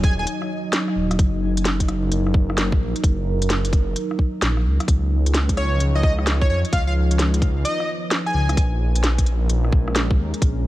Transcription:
Already playing: detuned saw bass D#1, ambient pad F#3 D#4 D#5
0.04 digital synth lead G#5, kick, closed hi-hat
0.19 digital synth lead G#5
0.27 closed hi-hat
0.42 cross-stick
0.73 snare, closed hi-hat
0.88 cross-stick
0.96 detuned saw bass D#1
1.11 cross-stick, closed hi-hat
1.19 detuned saw bass F#1, ambient pad A#4, kick, closed hi-hat
1.57 closed hi-hat
1.65 snare, closed hi-hat
1.80 kick, closed hi-hat
1.88 cross-stick, closed hi-hat
2.11 detuned saw bass F#1, closed hi-hat
2.27 cross-stick
2.34 kick
2.50 cross-stick
2.58 snare, closed hi-hat
2.72 kick
2.80 detuned saw bass A#1
2.96 closed hi-hat
3.03 detuned saw bass F#1, kick, closed hi-hat
3.42 closed hi-hat
3.50 snare, closed hi-hat
3.65 closed hi-hat
3.73 kick, closed hi-hat
3.96 closed hi-hat
4.11 cross-stick
4.19 kick
4.42 detuned saw bass A#1, snare, closed hi-hat
4.57 cross-stick
4.65 detuned saw bass C#2
4.80 cross-stick, closed hi-hat
4.88 detuned saw bass C#2, ambient pad F3 C#5, kick, closed hi-hat
5.26 closed hi-hat
5.34 snare, closed hi-hat
5.49 kick, closed hi-hat
5.57 digital synth lead C#5, cross-stick, closed hi-hat
5.80 detuned saw bass C#2, closed hi-hat
5.95 digital synth lead D#5, cross-stick
6.03 digital synth lead D#5, kick
6.19 cross-stick
6.27 snare, closed hi-hat
6.41 digital synth lead C#5, kick
6.50 detuned saw bass F2, digital synth lead C#5
6.65 closed hi-hat
6.72 detuned saw bass C#2, ambient pad B4, digital synth lead F5, kick, closed hi-hat
6.87 digital synth lead F5
7.11 closed hi-hat
7.19 snare, closed hi-hat
7.34 closed hi-hat
7.42 kick, closed hi-hat
7.65 digital synth lead D#5, closed hi-hat
7.80 cross-stick
8.11 snare, closed hi-hat
8.26 digital synth lead G#5, cross-stick
8.34 detuned saw bass C#2
8.49 cross-stick, closed hi-hat
8.57 detuned saw bass A#1, ambient pad G#3 C#4 A#4, kick, closed hi-hat
8.95 closed hi-hat
9.04 snare, closed hi-hat
9.18 kick, closed hi-hat
9.26 closed hi-hat
9.49 detuned saw bass A#1, closed hi-hat
9.65 cross-stick
9.73 kick
9.88 cross-stick
9.96 snare, closed hi-hat
10.11 kick
10.19 detuned saw bass D#2
10.34 closed hi-hat
10.42 detuned saw bass A#1, kick, closed hi-hat

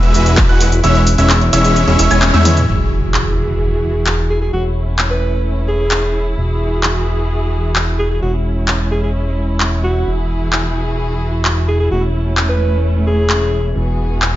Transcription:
Already playing: string section E3 E4 F#4 G#4
0.03 analog synth bass E1, supersaw synth G#3 E4 F#4 B4 E5, grand piano E6, closed hi-hat
0.14 open hi-hat, cabasa
0.26 closed hi-hat, cabasa
0.37 kick, clap, closed hi-hat, cabasa
0.49 analog synth bass E1, supersaw synth G#3 E4 F#4 B4 F#5, grand piano F#6, closed hi-hat
0.61 open hi-hat, cabasa
0.72 closed hi-hat, cabasa
0.84 analog synth bass E1, string section G#3 C#4, supersaw synth G#3 C#4 E4 C#5 E5, grand piano E6, closed hi-hat, cabasa
0.95 closed hi-hat
1.07 open hi-hat, cabasa
1.18 analog synth bass E1, supersaw synth G#3 C#4 E4 C#5 E5, grand piano E6, closed hi-hat, cabasa
1.30 clap, closed hi-hat, cabasa
1.41 closed hi-hat
1.53 analog synth bass E1, supersaw synth G#3 C#4 E4 C#5 E5, grand piano E6, open hi-hat, cabasa
1.65 closed hi-hat, cabasa
1.76 closed hi-hat, cabasa
1.87 analog synth bass E1, supersaw synth G#3 C#4 E4 C#5 E5, grand piano E6, closed hi-hat
1.99 analog synth bass E1, supersaw synth G#3 C#4 E4 C#5 E5, grand piano E6, open hi-hat, cabasa
2.11 analog synth bass E1, supersaw synth G#3 C#4 E4 C#5 G#5, grand piano G#6, closed hi-hat, cabasa
2.22 clap, closed hi-hat, high tom, cabasa
2.34 analog synth bass E2, supersaw synth G#3 C#4 E4 C#5 E5, grand piano E6, closed hi-hat, high tom
2.45 open hi-hat, mid tom, cabasa
2.57 closed hi-hat, mid tom, cabasa
2.68 analog synth bass E1, string section E3 E4 F#4 G#4, impact
3.14 clap
4.07 clap
4.30 alto saxophone G#4
4.41 alto saxophone G#4
4.53 analog synth bass E1, string section A3 C#4 E4, alto saxophone F#4
4.99 clap
5.11 alto saxophone B4
5.68 alto saxophone G#4
5.91 clap
6.37 analog synth bass E1, string section E3 F#4 G#4
6.83 clap
7.76 clap
7.99 alto saxophone G#4
8.11 alto saxophone G#4
8.22 analog synth bass E1, string section G#3 C#4 E4, alto saxophone F#4
8.68 clap
8.91 alto saxophone G#4
9.03 alto saxophone G#4
9.60 clap
9.84 alto saxophone F#4
10.07 analog synth bass E1, string section E3 F#4 G#4
10.53 clap
11.45 clap
11.68 alto saxophone G#4
11.80 alto saxophone G#4
11.91 analog synth bass E1, string section A3 C#4, alto saxophone F#4
12.37 clap
12.49 alto saxophone B4
13.07 alto saxophone G#4
13.30 clap
13.76 analog synth bass E1, string section E3 B3 F#4 G#4, riser
14.22 clap

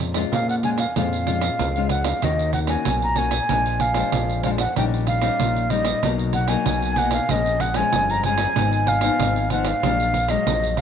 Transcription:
Already playing: analog synth bass F2, nylon-string guitar A#2 G#3 C#4 F4
0.00 pandeiro
0.14 nylon-string guitar G#3 C#4 F4, pandeiro
0.32 nylon-string guitar F2, analog synth bass A#2, flute F5, pandeiro
0.49 flute F#5, pandeiro
0.63 nylon-string guitar G#3 C#4 F4, flute G#5, pandeiro
0.78 flute F5, pandeiro
0.96 analog synth bass F2, nylon-string guitar A#2 G#3 C#4 F4, flute F5, pandeiro
1.13 pandeiro
1.27 nylon-string guitar G#3 C#4 F4, pandeiro
1.41 pandeiro
1.59 analog synth bass C#2, nylon-string guitar F2, pandeiro
1.76 nylon-string guitar G#3 C#4 F4, pandeiro
1.89 flute F#5, pandeiro
2.04 flute F5, pandeiro
2.22 analog synth bass D#2, nylon-string guitar D#3 A#3 C#4 F#4, flute D#5, pandeiro
2.39 pandeiro
2.53 flute F#5, pandeiro
2.67 nylon-string guitar A#3 C#4 F#4, flute G#5, pandeiro
2.85 analog synth bass B1, nylon-string guitar A#2, pandeiro
3.02 flute A#5, pandeiro
3.16 nylon-string guitar A#3 C#4 F#4, flute G#5, pandeiro
3.31 pandeiro
3.49 analog synth bass A#1, nylon-string guitar A#2 F3 G#3 D4, pandeiro
3.66 pandeiro
3.80 flute F5, pandeiro
3.94 nylon-string guitar F3 G#3 D4, pandeiro
4.12 analog synth bass A#1, nylon-string guitar F2, pandeiro
4.29 pandeiro
4.43 nylon-string guitar F3 G#3 D4, flute F5, pandeiro
4.58 flute F#5, pandeiro
4.76 analog synth bass A#1, nylon-string guitar A#2 G3 C#4 D#4, flute G5, pandeiro
4.94 pandeiro
5.07 flute F5, pandeiro
5.22 nylon-string guitar G3 C#4 D#4, pandeiro
5.40 analog synth bass A#1, nylon-string guitar A#2, pandeiro
5.57 pandeiro
5.70 nylon-string guitar G3 C#4 D#4, flute D#5, pandeiro
5.85 pandeiro
6.03 analog synth bass B1, nylon-string guitar B2 F#3 A#3 D#4, pandeiro
6.19 pandeiro
6.33 flute F#5, pandeiro
6.48 nylon-string guitar F#3 A#3 D#4, flute G#5, pandeiro
6.66 analog synth bass B1, nylon-string guitar B2, pandeiro
6.82 pandeiro
6.96 nylon-string guitar F#3 A#3 D#4, flute F#5, pandeiro
7.11 flute F5, pandeiro
7.29 analog synth bass A#1, nylon-string guitar A#2 F3 G#3 C#4, flute D#5, pandeiro
7.46 pandeiro
7.60 flute F#5, pandeiro
7.74 nylon-string guitar F3 G#3 C#4, flute G#5, pandeiro
7.93 analog synth bass G1, nylon-string guitar F2, pandeiro
8.10 flute A#5, pandeiro
8.23 nylon-string guitar F3 G#3 C#4, flute G#5, pandeiro
8.38 pandeiro
8.56 analog synth bass G#1, nylon-string guitar G#2 F3 B3 D#4, pandeiro
8.73 pandeiro
8.87 flute F5, pandeiro
9.01 nylon-string guitar F3 B3 D#4, pandeiro
9.19 analog synth bass G#1, nylon-string guitar G#2, pandeiro
9.36 pandeiro
9.50 nylon-string guitar F3 B3 D#4, flute F#5, pandeiro
9.65 flute F5, pandeiro
9.83 analog synth bass A#1, nylon-string guitar A#2 F#3 G#3 D4, pandeiro
10.00 pandeiro
10.14 pandeiro
10.28 nylon-string guitar F#3 G#3, flute D#5, pandeiro
10.47 analog synth bass A#1, nylon-string guitar F2, pandeiro
10.63 pandeiro
10.77 pandeiro

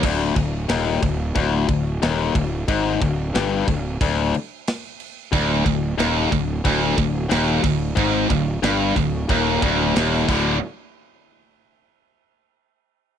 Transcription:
0.03 fingered electric bass D1, distorted electric guitar D2, kick, crash
0.36 fingered electric bass D1, distorted electric guitar D2, kick, crash
0.69 fingered electric bass D#1, distorted electric guitar D#2, snare, crash
1.02 fingered electric bass D1, distorted electric guitar D2, kick, crash
1.35 fingered electric bass D1, distorted electric guitar D2, kick, crash
1.68 fingered electric bass D1, distorted electric guitar D2, kick, crash
2.02 fingered electric bass D#1, distorted electric guitar D#2, snare, crash
2.35 fingered electric bass D1, distorted electric guitar D2, kick, crash
2.68 fingered electric bass G#1, distorted electric guitar G#2, kick, crash
3.02 fingered electric bass D1, distorted electric guitar D2, kick, crash
3.35 fingered electric bass G1, distorted electric guitar G2, snare, crash
3.68 fingered electric bass D1, distorted electric guitar D2, kick, crash
4.01 fingered electric bass D1, distorted electric guitar D2, kick, crash
4.34 crash
4.67 snare, crash
5.00 crash
5.32 fingered electric bass D1, distorted electric guitar D2, kick, crash
5.65 fingered electric bass D1, distorted electric guitar D2, kick, crash
5.98 fingered electric bass D#1, distorted electric guitar D#2, snare, crash
6.31 fingered electric bass D1, distorted electric guitar D2, kick, crash
6.64 fingered electric bass D1, distorted electric guitar D2, kick, crash
6.97 fingered electric bass D1, distorted electric guitar D2, kick, crash
7.29 fingered electric bass D#1, distorted electric guitar D#2, snare, crash
7.63 fingered electric bass D1, distorted electric guitar D2, kick, crash
7.96 fingered electric bass G#1, distorted electric guitar G#2, kick, crash
8.29 fingered electric bass D1, distorted electric guitar D2, kick, crash
8.63 fingered electric bass G1, distorted electric guitar G2, snare, crash
8.96 fingered electric bass D1, distorted electric guitar D2, kick, crash
9.29 fingered electric bass D#1, distorted electric guitar D#2, kick, crash
9.62 fingered electric bass D1, distorted electric guitar D2, kick, crash
9.96 fingered electric bass D#1, distorted electric guitar D#2, snare, crash
10.28 fingered electric bass D1, distorted electric guitar D2 A2 D3, kick, crash

